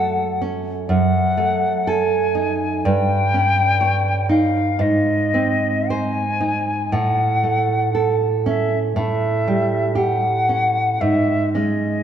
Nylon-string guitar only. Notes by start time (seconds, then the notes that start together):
Already playing: F#2 A3 A4
0.42 C#4
0.89 F#2
1.37 A3
1.87 A4
2.35 D#4
2.85 G2
3.34 C#4
3.81 C#5
4.29 D#4
4.79 G#2
5.34 C4
5.90 C5
6.40 D#4
6.92 A2
7.44 A3
7.95 A4
8.46 C#4
8.96 A2
9.48 G3
9.95 G4
10.49 C#4
11.01 G#2
11.55 G#3 C#4